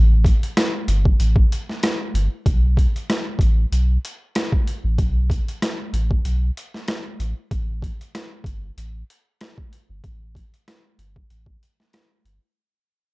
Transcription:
Already playing: A1
0.25 kick, closed hi-hat
0.43 closed hi-hat
0.57 cross-stick, snare, closed hi-hat
0.88 G1, closed hi-hat
1.05 kick
1.19 A1, closed hi-hat
1.36 kick
1.52 closed hi-hat
1.69 snare
1.83 cross-stick, snare, closed hi-hat
2.14 G1, closed hi-hat
2.46 B1, kick, closed hi-hat
2.77 kick, closed hi-hat
2.96 closed hi-hat
3.10 cross-stick, snare, closed hi-hat
3.39 A1, kick, closed hi-hat
3.72 B1, closed hi-hat
4.05 closed hi-hat
4.35 cross-stick, snare, closed hi-hat
4.52 kick
4.67 closed hi-hat
4.84 A1
4.98 B1, kick, closed hi-hat
5.30 kick, closed hi-hat
5.48 closed hi-hat
5.62 cross-stick, snare, closed hi-hat
5.93 A1, closed hi-hat
6.11 kick
6.25 B1, closed hi-hat
6.57 closed hi-hat
6.74 snare
6.88 cross-stick, snare, closed hi-hat
7.19 A1, closed hi-hat
7.51 A1, kick, closed hi-hat
7.82 kick, closed hi-hat
8.01 closed hi-hat
8.15 cross-stick, snare, closed hi-hat
8.44 G1, kick, closed hi-hat
8.77 A1, closed hi-hat
9.10 closed hi-hat
9.41 cross-stick, snare, closed hi-hat
9.58 kick
9.73 closed hi-hat
9.89 G1
10.04 A1, kick, closed hi-hat
10.35 kick, closed hi-hat
10.54 closed hi-hat
10.68 cross-stick, snare, closed hi-hat
10.98 G1, closed hi-hat
11.16 kick
11.30 A1, closed hi-hat
11.46 kick
11.63 closed hi-hat
11.80 snare
11.93 cross-stick, snare, closed hi-hat
12.25 G1, closed hi-hat

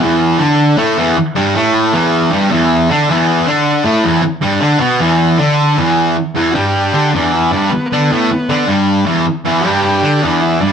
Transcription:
Already playing: B3
0.03 E2 E3
0.38 D3 D4
0.77 A2 A3
0.97 E2 E3
1.17 muted distorted electric guitar stroke
1.35 G2 G3
1.54 A2 A3
1.93 E2 E3
2.31 G2 G3
2.50 E2 E3
2.89 D3 D4
3.09 E2 E3
3.46 D3 D4
3.85 A2 A3
4.04 E2 E3
4.23 muted distorted electric guitar stroke
4.42 G2 G3
4.60 D3 D4
4.79 B2 B3
4.99 E2 E3
5.38 D3 D4
5.78 E2 E3
6.35 E2 E3
6.51 G2 F#4 G4
6.55 G3
6.93 D3 D4
7.14 E2 E3 D4
7.34 E4
7.51 G2 G3 D4
7.70 B3, muted distorted electric guitar stroke
7.86 A#3
7.90 D3 B3 D4
8.11 A2 A3
8.31 muted distorted electric guitar stroke
8.49 D3 D4
8.67 G2 G3
9.06 E2 E3
9.45 E2 E3
9.61 G2 F#4
9.66 G3 G4
10.02 D3 D4
10.22 E2 E3 D4
10.42 E4
10.60 G2 G3 D4

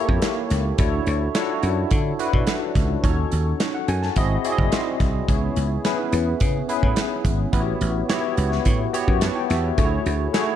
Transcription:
Already playing: A#3 E4 G4 A4 C#5 E5
0.09 F2, kick
0.22 snare, closed hi-hat
0.50 C#2, snare, closed hi-hat
0.78 D2 D4 E4 F#4 A4 C#5, kick, closed hi-hat
1.07 D2, closed hi-hat
1.35 D4 E4 F4 A4 C#5, snare, closed hi-hat
1.42 F#4
1.63 F#2, closed hi-hat
1.91 D3, kick, closed hi-hat
2.19 D4 E4 F#4 A4 B4, closed hi-hat
2.33 B2, kick
2.47 snare, closed hi-hat
2.75 C#2, kick, snare, closed hi-hat
3.03 D#2 C#4 D#4 F4 A4 C#5, kick, closed hi-hat
3.10 F#4
3.32 D#2, closed hi-hat
3.60 snare, closed hi-hat
3.74 F#5
3.88 F#2 G#5, closed hi-hat
4.02 A5, snare
4.16 G#1 C4 E4 F#4 G#4 D#5, kick, closed hi-hat
4.44 C4 E4 F#4 G#4 D5, closed hi-hat
4.52 D#5
4.58 F#1, kick
4.72 C6, snare, closed hi-hat
5.00 C2, kick, snare, closed hi-hat
5.28 C#2 B3 C#4 E4 G#4 C#5, kick, closed hi-hat
5.56 C#2, closed hi-hat
5.85 B3 C#4 E4 G#4 B4, snare, closed hi-hat
6.12 E2, closed hi-hat
6.40 C#3, kick, closed hi-hat
6.68 B3 C#4 E4 G#4 B4, closed hi-hat
6.83 A2, kick
6.96 snare, closed hi-hat
7.25 G#1, kick, closed hi-hat
7.52 A1 B3 E4 F#4 G4 B4, kick, closed hi-hat
7.60 C#5
7.81 A1, closed hi-hat
8.08 B3 E4 F#4 G4 C#5, snare, closed hi-hat
8.37 C#2, closed hi-hat
8.52 snare
8.65 A2, kick, closed hi-hat
8.93 B3 E4 F#4 G4 C#5, closed hi-hat
9.08 F#2, kick
9.21 F#5 A5, snare, closed hi-hat
9.35 G5
9.50 E2 E5, snare, closed hi-hat
9.64 C#5
9.77 D2 A3 E4 F4 G#4 C#5, kick, closed hi-hat
9.85 F#4
10.06 D2, closed hi-hat
10.33 A3 E4 F#4 G#4 C#5, snare, closed hi-hat

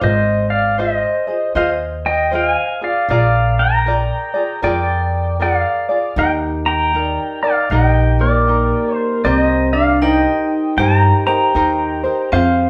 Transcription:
0.01 G#1 F4 G#4 C5 D#5
0.50 D5 F5
0.78 F4 G#4 C5 D#5
1.27 F4 G#4 D#5
1.55 D#2 F4 G#4 C5 D#5 F5
2.06 D#5 G5
2.31 F4 G#4 C5 D#5 F5 G5
2.48 G#5
2.81 F4 G#4 D5 F5
3.09 A#1 F4 G#4 A#4 D5 F5
3.59 G5 A#5
3.86 F4 G#4 A#4 D5
4.34 F4 G#4 D5
4.62 F2 F4 G#4 A#4 D5 G5
5.40 F4 G#4 A#4 D5 F5
5.89 F4 G#4 D5
6.16 D#2 D#4 G4 A#4 D#5 G5
6.66 G5 A#5
6.94 D#4 G4 A#4 D5
7.43 D#4 A#4 D5 F5
7.70 A#1 D#4 G4 A#4 D#5 G5
8.19 A#3 A#4 D5
8.48 D#4 G4 A#4
8.95 C5
9.24 C2 C4 G4 A#4 C5 D5
9.38 D#5
9.73 D4 D5 F5
10.01 D#4 G4 A#4 C5 D#5 G5
10.77 G2 D#4 G4 A#4 C5 G5 A#5
11.27 D#4 G4 A#4 C5 G5 A#5
11.55 D#2 D#4 G4 A#4 C5
12.04 D#4 A#4 C5
12.32 F2 C4 F4 G4 G#4 C5 F5

